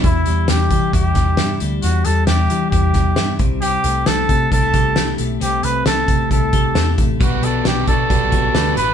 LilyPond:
<<
  \new Staff \with { instrumentName = "Trumpet" } { \time 4/4 \key e \minor \tempo 4 = 134 e'4 g'4 g'4. r8 | fis'8 a'8 g'4 g'4. r8 | g'4 a'4 a'4. r8 | g'8 b'8 a'4 a'4. r8 |
fis'8 a'8 g'8 a'2 b'8 | }
  \new Staff \with { instrumentName = "Upright piano" } { \time 4/4 \key e \minor r1 | r1 | r1 | r1 |
<fis' g' b'>8 <fis' g' d''>8 <fis' g' b'>8 <fis' g' d''>8 <fis' g' b'>8 <fis' g' b'>8 <fis' g' b'>8 <fis' g' b'>8 | }
  \new Staff \with { instrumentName = "Overdriven electric guitar" } { \time 4/4 \key e \minor r1 | r1 | r1 | r1 |
<b, g b d' fis'>8 <b d' fis'>8 <g b d' fis'>8 <b d' fis'>8 <b, g b d' fis'>4 <g b d' fis'>8 <b d' fis'>8 | }
  \new Staff \with { instrumentName = "Clean electric guitar" } { \time 4/4 \key e \minor e,8 g8 e'8 g8 e'4 e'8 g8 | e,8 g8 e'8 g8 e'4 e'8 c8 | c8 a8 e'8 a8 d'16 e'16 g'8 e'8 a8 | c8 a8 e'8 a8 e'8 g'8 e'8 a8 |
b,8 b8 d'8 b8 d'8 fis'8 d'8 b8 | }
  \new Staff \with { instrumentName = "Picked electric bass" } { \clef bass \time 4/4 \key e \minor e,8 e,8 e,8 e8 e,8 e,8 g,8 d,8 | e,8 e,8 e,8 e8 e,8 e,8 g,8 c,8~ | c,8 c,8 c,8 c8 c,8 c,8 c,8 b,,8 | c,8 c,8 c,8 c8 c,8 c,8 e,8 a,,8 |
b,,8 b,,8 b,,8 b,8 b,,8 b,,8 d,8 a,,8 | }
  \new DrumStaff \with { instrumentName = "Drums" } \drummode { \time 4/4 <hh bd>8 hh8 <hh sn>8 <hh bd>8 <hh bd>8 <hh bd sn>8 <hh sn>8 hh8 | hh8 hh8 <hh sn>8 hh8 <hh bd>8 <hh bd sn>8 <hh sn>8 <hh bd>8 | hh8 hh8 <hh sn>8 <hh bd>8 <hh bd>8 <hh bd>8 <hh sn>8 hh8 | hh8 hh8 <hh sn>8 <hh bd>8 <hh bd>8 <hh bd>8 <hh sn>8 <hh bd>8 |
<hh bd>8 hh8 <hh sn>8 <hh bd>8 <hh bd>8 <hh bd>8 <hh sn>8 hh8 | }
>>